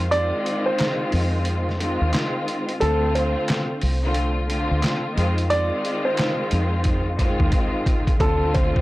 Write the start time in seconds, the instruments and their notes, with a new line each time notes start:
Already playing: fingered electric bass F2
0.10 string section D#3 G#3 C4 F4, upright piano D5, closed hi-hat
0.46 closed hi-hat
0.66 upright piano C5
0.78 snare, clap, closed hi-hat
1.12 fingered electric bass F2, open hi-hat
1.45 closed hi-hat
1.69 snare
1.78 string section D#3 G#3 C4 F4, closed hi-hat
2.02 fingered electric bass D#2
2.13 snare, clap, closed hi-hat
2.48 closed hi-hat
2.69 closed hi-hat
2.80 fingered electric bass D2, string section D3 A3 C4 F4, upright piano A4, closed hi-hat
3.15 upright piano C5, closed hi-hat
3.48 snare, clap, closed hi-hat
3.82 fingered electric bass C2, open hi-hat
4.03 string section D3 A3 C4 F4
4.14 closed hi-hat
4.48 string section D3 A3 C4 F4, closed hi-hat
4.71 fingered electric bass D2
4.82 snare, clap, closed hi-hat
5.14 fingered electric bass F2, string section D#3 G#3 C4 F4, closed hi-hat
5.38 closed hi-hat
5.49 string section D#3 G#3 C4 F4, upright piano D5, closed hi-hat
5.85 closed hi-hat
6.05 upright piano C5
6.17 snare, clap, closed hi-hat
6.51 fingered electric bass F2, closed hi-hat
6.84 kick, closed hi-hat
7.17 string section D#3 G#3 C4 F4, kick, closed hi-hat
7.40 fingered electric bass D#2, kick
7.52 kick, closed hi-hat
7.86 kick, closed hi-hat
8.07 kick, closed hi-hat
8.19 fingered electric bass D2, string section D3 A3 C4 F4, upright piano A4, kick, closed hi-hat
8.54 upright piano C5, kick, closed hi-hat
8.76 kick